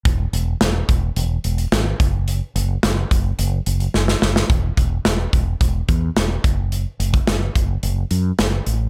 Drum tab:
HH |x-x-x-x-x-xxx-x-|x-x-x-x-x-xx----|x-x-x-x-x-x-x-x-|x-xxx-x-x-x-x-x-|
SD |----o-------o---|----o-------oooo|----o-------o---|----o-------o---|
BD |o-----o-------o-|------o---------|o-o---o-o-o---o-|---o--o---------|